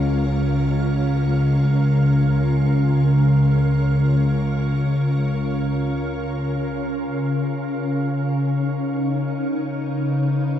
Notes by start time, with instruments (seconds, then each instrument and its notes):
Already playing: cello section C#2, ambient pad C#3 C#4 F4 A#4 F5
8.21 ambient pad D#4
9.63 ambient pad B4